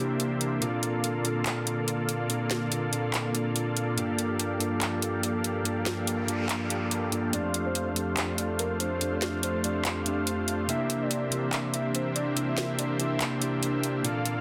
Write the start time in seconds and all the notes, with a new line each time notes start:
Already playing: C3 E3 A#3 C4 D4 G4 A#4 C5 E5
0.00 D4 E4 G4
0.20 closed hi-hat
0.41 closed hi-hat
0.60 A#2 D3 A#3 C4 D4 F4 A4 D5 F5, closed hi-hat
0.64 A4
0.83 closed hi-hat
1.04 closed hi-hat
1.23 A#2 C4 D4 F4, closed hi-hat
1.27 A4
1.46 clap, closed hi-hat
1.67 closed hi-hat
1.88 closed hi-hat
2.09 closed hi-hat
2.28 A#2 C4 D4 F4, closed hi-hat
2.32 A4
2.51 snare, closed hi-hat
2.72 closed hi-hat
2.92 A#2 C4 D4 F4 A4, closed hi-hat
3.14 clap, closed hi-hat
3.33 A#2 C4 D4 F4, closed hi-hat
3.37 A4
3.56 closed hi-hat
3.77 closed hi-hat
3.96 G2 F3 A#3 D4 F4 G4 A4 D5 F5, closed hi-hat
4.00 A4
4.18 closed hi-hat
4.39 closed hi-hat
4.58 G2 A#3 D4 F4, closed hi-hat
4.62 A4
4.81 clap, closed hi-hat
5.02 closed hi-hat
5.23 closed hi-hat
5.44 closed hi-hat
5.63 G2 A#3 D4 F4 A4, closed hi-hat, noise sweep
5.86 snare, closed hi-hat
6.07 closed hi-hat
6.27 G2 A#3 D4 F4 A4, closed hi-hat
6.49 clap, closed hi-hat
6.70 closed hi-hat
6.91 closed hi-hat
7.11 G2 A#3 D4 F4 A4, closed hi-hat
7.31 F2 A3 C4 D4 F4 A4 C5 D5 F5, closed hi-hat
7.54 closed hi-hat
7.66 C5
7.75 closed hi-hat
7.94 F2 A3 C4 D4 G4, closed hi-hat
8.17 clap, closed hi-hat
8.38 D5, closed hi-hat
8.59 A#4, closed hi-hat
8.80 C5, closed hi-hat
8.99 F2 A3 C4 D4 G4, closed hi-hat
9.13 D5
9.22 snare, closed hi-hat
9.43 C5, closed hi-hat
9.63 F2 A3 C4 D4 G4 D5, closed hi-hat
9.85 clap, closed hi-hat
10.04 F2 A3 C4 D4 G4, closed hi-hat
10.27 closed hi-hat
10.48 closed hi-hat
10.67 C3 E3 A#3 C4 D4 E4 G4 A#4 C5 E5, closed hi-hat
10.90 closed hi-hat
11.01 D5
11.11 closed hi-hat
11.30 C3 A#3 D4 E4 G4, closed hi-hat
11.53 clap, closed hi-hat
11.74 E5, closed hi-hat
11.95 C5, closed hi-hat
12.16 D5, closed hi-hat
12.35 C3 A#3 D4 E4 G4, closed hi-hat
12.48 E5
12.58 snare, closed hi-hat
12.79 D5, closed hi-hat
12.99 C3 A#3 D4 E4 G4 E5, closed hi-hat
13.21 clap, closed hi-hat
13.40 C3 A#3 D4 E4, closed hi-hat
13.44 G4
13.63 closed hi-hat
13.83 closed hi-hat
14.03 A#2 D3 A#3 C4 D4 F4 A4 D5 F5, closed hi-hat
14.07 A4
14.26 closed hi-hat
14.37 F5